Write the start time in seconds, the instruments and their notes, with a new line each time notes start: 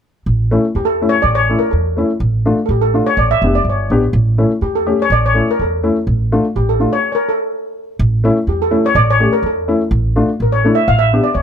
0.26 upright bass A1
0.51 upright piano A3 C#4 E4
0.75 upright bass E2, steel pan G4
0.85 steel pan A4
1.02 upright piano A3 C#4 E4
1.09 steel pan C#5
1.22 upright bass A1, steel pan D5
1.35 steel pan C#5
1.49 upright piano A3 C#4 E4
1.59 steel pan A#4
1.71 upright bass E2, steel pan A4
1.97 upright piano A3 C#4 E4
2.20 upright bass A1
2.46 upright piano A3 D4 F4
2.66 upright bass A1, steel pan A4
2.70 steel pan G4
2.82 steel pan A4
2.94 upright piano A3 D4 F4
3.07 steel pan C#5
3.17 upright bass A1, steel pan D5
3.31 steel pan E5
3.42 upright bass F1, upright piano B3 D4 G4
3.55 steel pan D5
3.65 upright bass G1
3.69 steel pan C#5
3.90 upright bass A1, upright piano B3 D4 G4
4.13 upright bass A1
4.38 upright piano A3 C#4 E4
4.61 upright bass E2, steel pan G4
4.75 steel pan A4
4.87 upright piano A3 C#4 G4
5.02 steel pan C#5
5.10 upright bass A1, steel pan D5
5.26 steel pan C#5
5.34 upright piano A3 C#4 E4
5.51 steel pan A#4
5.59 upright bass E2, steel pan A4
5.83 upright piano A3 C#4 E4
6.07 upright bass A1
6.32 upright piano A3 D4 F4
6.56 upright bass A1, steel pan G4
6.69 steel pan A4
6.80 upright piano A3 D4 F4
6.93 steel pan C#5
7.12 steel pan A#4 C#5
7.29 steel pan A4
7.99 upright bass A1
8.24 upright piano A3 C#4 E4
8.47 upright bass E2, steel pan G4
8.62 steel pan A4
8.71 upright piano A3 C#4 E4
8.86 steel pan C#5
8.95 upright bass A1, steel pan D5
9.11 steel pan C#5
9.20 upright piano A3 C#4 G4
9.33 steel pan A#4
9.43 upright bass E2, steel pan A4
9.68 upright piano A3 C#4 E4
9.91 upright bass A1
10.16 upright piano A3 D4 F4
10.40 upright bass A1, steel pan A#4
10.52 steel pan C#5
10.64 upright piano A3 D4 E4
10.75 steel pan E5
10.88 upright bass A1, steel pan F5
10.99 steel pan E5
11.13 upright piano B3 D4 G4
11.24 steel pan D5
11.34 upright bass D2, steel pan C#5